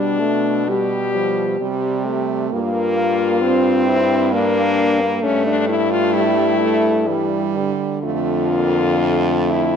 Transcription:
Already playing: B2 G3 D4
0.19 A3
0.67 G3 G4
1.15 F3
1.60 C3 G3
2.05 A3
2.51 G2 A#3 F4
3.41 C4
3.88 E4
4.31 A#3 D4
5.01 A#3
5.22 G2 A3 C#4
5.47 D4
5.68 E4
5.91 F4
6.13 G3 E4
6.60 A3
7.07 E3 G3
7.56 D3
8.03 F2 A3 F4
8.52 A#3
8.99 A3
9.50 E4

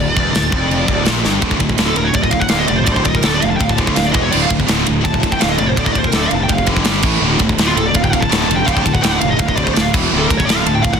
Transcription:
Already playing: D5
0.00 D1 D2
0.17 E1 E2, kick
0.35 D1 D2, snare, crash
0.52 F1 F2, kick
0.71 crash
0.88 D1 D2, kick
1.05 A#1 A#2, snare, crash
1.25 G1 G2, snare
1.42 D1 D2 A2 D3, kick, ride
1.51 kick
1.60 D1 D2 A2 D3, kick, ride
1.69 kick
1.78 D1 D2 A2 D3, snare, ride
1.86 A4
1.96 D1 D2 A2 D3 A#4, ride
2.04 C#5
2.14 D1 D2 A2 D3 D5, kick, ride
2.22 D#5, kick
2.31 D2 A2 D3 F5, kick, ride
2.39 F#5, kick
2.49 D1 D2 A2 D3 F5, snare, ride
2.59 D#5
2.68 F1 D2 A2 D3 D5, ride
2.77 C5
2.85 D1 D2 A2 D5, kick, ride
2.89 D3 C5
2.96 kick
3.05 D1 D2 A2 D3 D5 D#5, kick, ride
3.15 A#4, kick
3.23 D1 D2 A2 D3 A4, snare, ride
3.34 D5
3.42 F1 D2 A2 D3 F5, ride
3.50 A5
3.57 D1 G5, kick, ride
3.61 D2 A2 D3 F5
3.69 A5, kick
3.78 D2 A2 D3, kick, ride
3.87 kick
3.96 D1 D2 A2 D3 F5, snare, ride
4.06 D5
4.13 E1 E2 B2 E3 D#5, kick, ride
4.23 C#5
4.32 D1 D2 A2 D3 D5, crash
4.42 F5
4.50 D1 D2 A2 D3, kick, ride
4.60 kick
4.68 D1 D2 A2 D3, snare, ride
4.86 D1 D2 A2 D3, ride
5.04 D1 D2 A2 D3 A5, kick, ride
5.14 kick
5.23 D2 A2 D3, kick, ride
5.32 G5, kick
5.40 D1 D2 A2 D3 F5, snare, ride
5.49 D#5
5.58 F1 D2 A2 D3 D5, ride
5.69 C5
5.76 D1 D2 A2 D3 D5, kick, ride
5.85 D#5, kick
5.93 D1 D2 A2 D5, kick, ride
5.97 D3 C5
6.04 A#4, kick
6.12 D1 D2 A2 D3 A4, snare, ride
6.22 D5
6.29 F1 D2 A2 D3 F5, ride
6.35 A5
6.44 G5
6.49 F1 D2 A2 D3 F5, kick, ride
6.58 kick
6.66 D2 A2 D3, kick, ride
6.71 D3
6.76 kick
6.84 G1 G2 D3, snare, ride
6.89 G3
7.02 A1 A2 E3, kick, crash
7.07 A3
7.22 D1 D2 A2 D3
7.39 D1 D2 A2 D3, kick, ride
7.49 kick
7.57 D1 D2 A2 D3, snare, ride
7.67 F4
7.75 D1 D2 A2 D3 A4, ride
7.86 D5
7.94 D1 D2 A2 D3 F5, kick, ride
8.04 G5, kick
8.13 D2 A2 D3 F5, kick, ride
8.21 A5, kick
8.30 D1 D2 A2 D3 A5, snare, ride
8.49 F1 D2 A2 D3, ride
8.55 G5
8.66 D1 D2 A2 D3 F5, kick, ride
8.73 G5, kick
8.82 D2 A2 A5
8.86 D1 D2 A2 D3, kick, ride
8.93 F#5, kick
9.03 D1 D2 A2 D3 G5, snare, ride
9.12 F#5
9.20 F1 D2 A2 D3 F5, ride
9.30 D#5
9.37 D1 D2 A2 F5, kick, ride
9.41 D2 A2 D3
9.48 D#5, kick
9.56 D2 A2 D3 D5, kick, ride
9.64 C5, kick
9.73 D2 A2 D3 D5, ride
9.77 D1 F5, snare
9.94 E1 E2 B2 E3, kick, crash
10.13 D1 D2 A2 D3
10.18 A4
10.26 D1 A#4
10.30 D2 A2 D3, kick, ride
10.37 C#5, kick
10.45 D5
10.49 D1 D2 A2 D3, snare, ride
10.56 F5
10.66 D1 D2 A2 D3 A5, ride
10.75 G5
10.83 D1 D2 A2 D3 F5, kick, ride
10.93 F#5, kick

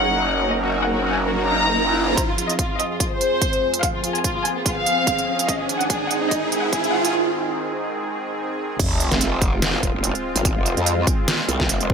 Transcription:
Already playing: F#1 F#3 C#4 D#4 A#4 F#5, riser
0.52 D#5
0.63 F#4
0.73 F#4
0.84 F#5
0.93 F#4
1.05 F#4
1.14 G#5
1.25 F#4
1.35 F#4
1.46 A#5
2.17 F2 F3 C4 G#4 C5, kick, closed hi-hat, riser
2.29 F4
2.38 F4, closed hi-hat
2.49 D#5, closed hi-hat
2.59 F4, kick, closed hi-hat
2.70 F4
2.80 D#5, closed hi-hat
2.91 F4
3.00 F4, kick, closed hi-hat
3.11 C5
3.21 closed hi-hat
3.42 kick, closed hi-hat
3.53 closed hi-hat
3.74 closed hi-hat
3.83 F5, kick, closed hi-hat
3.94 F4
4.04 F4, closed hi-hat
4.15 G#5, closed hi-hat
4.24 F4, kick, closed hi-hat
4.36 F4
4.45 G#5, closed hi-hat
4.56 F4
4.66 F4, kick, closed hi-hat
4.77 F5
4.86 closed hi-hat
5.07 kick, closed hi-hat
5.18 closed hi-hat
5.39 closed hi-hat
5.48 G#2 D#3 D#5, kick, closed hi-hat
5.60 G#4
5.69 G#4, closed hi-hat
5.81 F#5, closed hi-hat
5.90 G#4, kick, closed hi-hat
6.01 G#4
6.11 F#5, closed hi-hat
6.22 G#4
6.31 D#5, kick, closed hi-hat
6.43 G#4
6.52 G#4, closed hi-hat
6.63 F#5
6.73 G#4, kick, closed hi-hat
6.84 G#4, closed hi-hat
6.93 F#5
7.05 G#4, closed hi-hat
8.79 F1 G#3 C4 F4, kick, closed hi-hat, crash, sub drop
9.00 closed hi-hat
9.12 snare, closed hi-hat
9.21 closed hi-hat
9.42 kick, closed hi-hat
9.62 F1, snare, closed hi-hat
9.83 kick, closed hi-hat
9.94 F#1
10.04 closed hi-hat
10.15 closed hi-hat
10.36 G#1, closed hi-hat
10.45 kick, closed hi-hat
10.56 F1
10.66 closed hi-hat
10.77 F2, closed hi-hat
10.86 closed hi-hat
11.07 kick, closed hi-hat
11.28 snare, closed hi-hat
11.48 C2, closed hi-hat
11.60 kick, snare
11.69 F1, closed hi-hat
11.81 closed hi-hat
11.90 kick

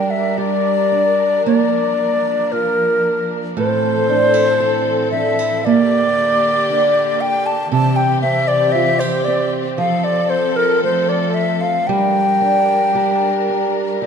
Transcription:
Already playing: G3 D4 G4 A#4 G5
0.10 E5
0.37 G4 D5
0.92 D4
1.46 F3 A#3 D5
2.52 F4 A#4
3.57 A2 E3 C4 A4 C5
4.09 D4
4.34 E4
4.60 A4
5.11 D4 E5
5.39 E4
5.57 E5
5.65 D3 A#3 G4 D5
6.70 D4
7.21 G5
7.46 A5
7.69 C3 E3 C4 G4 A5
7.96 G5
8.21 C4 E5
8.48 D5
8.72 F4 E5
8.99 G4 C5
9.24 C4 D5
9.78 F3 A4 F5
10.04 D5
10.30 C5
10.56 A#4
10.84 A3 C5
11.09 D5
11.34 E5
11.61 F5
11.87 G3 D4 G4 A#4 G5
12.41 D4
12.95 G4
13.49 D4
14.01 E4 G4 D5

